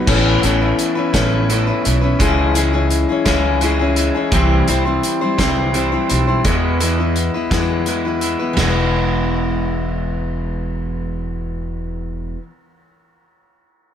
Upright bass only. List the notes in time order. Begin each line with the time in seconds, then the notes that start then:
0.07 A1
0.44 A1
1.14 A1
1.86 B1
2.21 C#2
3.26 C#2
4.32 C2
4.69 C2
5.39 C2
6.11 B1
6.45 E2
7.51 E2
8.58 E1